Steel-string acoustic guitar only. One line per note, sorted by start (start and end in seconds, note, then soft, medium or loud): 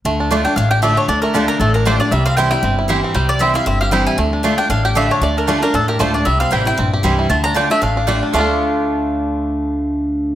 0.05 0.29 D3 medium
0.31 0.45 D3 medium
0.31 0.45 A3 medium
0.31 0.45 D4 medium
0.31 0.44 F4 medium
0.45 0.57 D4 soft
0.45 0.57 F4 medium
0.58 1.07 A2 medium
0.82 1.07 D3 medium
0.82 1.07 A3 medium
0.82 1.08 D4 medium
0.82 1.08 F4 medium
1.09 1.33 D3 medium
1.34 1.59 D3 medium
1.34 1.59 A3 medium
1.34 1.59 D4 medium
1.34 1.60 F4 medium
1.61 2.10 A2 medium
1.85 1.99 D3 medium
1.85 2.00 A3 medium
1.85 2.00 D4 medium
1.85 1.98 F4 medium
2.00 2.12 D4 medium
2.00 2.11 F4 medium
2.12 2.61 C3 medium
2.37 2.51 E3 medium
2.37 2.52 G3 medium
2.37 2.52 C4 loud
2.37 2.50 E4 loud
2.51 2.64 C4 medium
2.51 2.63 E4 medium
2.63 3.12 G2 medium
2.88 3.13 E3 medium
2.88 3.14 G3 medium
2.88 3.14 C4 medium
2.88 3.14 E4 medium
3.14 3.64 C3 medium
3.39 3.54 E3 medium
3.39 3.54 G3 medium
3.39 3.54 C4 medium
3.39 3.53 E4 medium
3.54 3.66 C4 soft
3.54 3.66 E4 medium
3.66 4.16 G2 loud
3.91 4.17 E3 medium
3.91 4.17 G3 medium
3.91 4.17 C4 medium
3.91 4.18 E4 medium
4.18 4.42 D3 medium
4.43 4.57 D3 medium
4.43 4.58 A3 medium
4.43 4.58 D4 loud
4.43 4.57 F4 medium
4.58 4.70 D4 soft
4.58 4.70 F4 medium
4.70 5.20 A2 medium
4.95 5.20 D3 medium
4.95 5.21 A3 medium
4.95 5.21 D4 medium
4.95 5.21 F4 loud
5.22 5.46 D3 medium
5.48 5.62 D3 medium
5.48 5.62 A3 medium
5.48 5.62 D4 loud
5.48 5.61 F4 loud
5.62 5.74 D4 medium
5.62 5.73 F4 medium
5.74 6.23 A2 medium
5.99 6.13 D3 medium
5.99 6.14 A3 medium
5.99 6.14 D4 medium
5.99 6.13 F4 medium
6.14 6.26 D4 soft
6.14 6.25 F4 medium
6.25 6.75 C3 medium
6.51 6.65 E3 medium
6.51 6.65 G3 medium
6.51 6.66 C4 medium
6.51 6.64 E4 medium
6.65 6.78 C4 medium
6.65 6.77 E4 medium
6.78 7.27 G2 medium
7.03 7.28 E3 medium
7.03 7.28 G3 medium
7.03 7.29 C4 medium
7.03 7.29 E4 medium
7.30 7.53 D3 medium
7.54 7.69 D3 medium
7.54 7.69 A3 medium
7.54 7.69 D4 medium
7.54 7.69 F4 medium
7.70 7.82 D4 medium
7.70 7.81 F4 medium
7.82 8.31 A2 medium
8.07 8.32 D3 medium
8.07 8.32 A3 medium
8.07 8.33 D4 loud
8.07 8.33 F4 medium
8.33 10.35 D3 medium
8.33 10.35 A3 medium
8.33 10.35 D4 medium
8.33 10.35 F4 medium